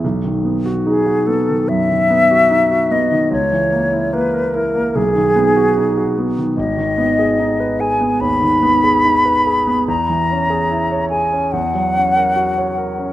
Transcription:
<<
  \new Staff \with { instrumentName = "Flute" } { \time 4/4 \key b \mixolydian \tempo 4 = 73 r4 gis'8 a'8 e''4. dis''8 | cis''4 b'8 ais'8 gis'4. r8 | \key gis \minor dis''4. gis''8 b''2 | ais''4. gis''8 fis''2 | }
  \new Staff \with { instrumentName = "Grand piano" } { \time 4/4 \key b \mixolydian b,,16 dis16 b16 fis'16 dis'16 fis'16 b16 dis16 fis,16 dis16 b16 fis'16 dis'16 fis'16 b16 dis16 | cis,16 e16 ais16 e'16 ais16 ais'16 e'16 ais16 b,,16 dis16 b16 fis'16 dis'16 fis'16 b16 dis16 | \key gis \minor gis,,16 dis16 b16 gis'16 dis'16 b'16 gis'16 b16 dis,16 dis16 b16 gis'16 dis'16 b'16 gis'16 b16 | e,16 e16 cis'16 gis'16 e'16 cis''16 gis'16 cis'16 e,16 fis16 cis'16 ais'16 fis'16 cis''16 ais'16 cis'16 | }
>>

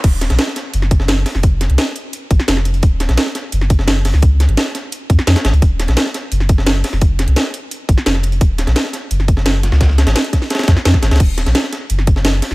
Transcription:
<<
  \new Staff \with { instrumentName = "Sub bass" } { \clef bass \time 4/4 \key ees \dorian \tempo 4 = 172 ees,,8. bes,,16 r4 ges,,4. r16 f,,16~ | f,,8. c,16 r4. aes,,16 r16 f,,4 | ees,,8. bes,,16 r4 ges,,4.~ ges,,16 des,16~ | des,8. aes,,16 r4. f,16 r16 f,16 r16 aes,,16 des,16 |
ees,,8. bes,,16 r4 ges,,4. r16 f,,16~ | f,,8. c,16 r4. aes,,16 r16 f,,4 | ees,,8. bes,,16 r4 ges,,4.~ ges,,16 des,16~ | des,8. aes,,16 r4. f,16 r16 f,16 r16 aes,,16 des,16 |
ees,,8. bes,,16 r4 ges,,4. r16 f,,16 | }
  \new DrumStaff \with { instrumentName = "Drums" } \drummode { \time 4/4 <cymc hh bd>8 <hh sn>16 <hh sn>16 <hh sn>16 sn16 <hh sn>8 hh16 sn16 <hh bd>16 sn16 <hh sn>8 <hh hho sn>16 sn16 | <hh bd>8 <hh sn>16 hh16 <hh sn>8 hh8 hh8 <hh bd>16 sn16 <hh sn>16 sn16 hh16 hh16 | <hh bd>8 <hh sn>16 <hh sn>16 <hh sn>16 sn16 <hh sn>8 hh16 sn16 <hh bd>16 sn16 <hh sn>8 <hh hho sn>16 sn16 | <hh bd>8 <hh sn>16 hh16 <hh sn>8 <hh sn>8 hh8 <hh bd>16 sn16 <hh sn>16 <hh sn>16 <hh sn>16 hh16 |
<hh bd>8 <hh sn>16 <hh sn>16 <hh sn>16 sn16 <hh sn>8 hh16 sn16 <hh bd>16 sn16 <hh sn>8 <hh hho sn>16 sn16 | <hh bd>8 <hh sn>16 hh16 <hh sn>8 hh8 hh8 <hh bd>16 sn16 <hh sn>16 sn16 hh16 hh16 | <hh bd>8 <hh sn>16 <hh sn>16 <hh sn>16 sn16 <hh sn>8 hh16 sn16 <hh bd>16 sn16 <hh sn>8 <hh sn>16 sn16 | <hh bd sn>16 sn16 <hh sn>16 <hh sn>16 <hh sn>16 hh16 <hh bd sn>16 sn16 <hh sn>32 <hh sn>32 <hh sn>32 <hh sn>32 <hh bd sn>16 sn16 <hh sn>16 <bd sn>16 <hh sn>16 <hh sn>32 <hh sn>32 |
<cymc hh bd>8 <hh sn>16 <hh sn>16 <hh sn>16 sn16 <hh sn>8 hh16 sn16 <hh bd>16 sn16 <hh sn>8 <hh hho sn>16 sn16 | }
>>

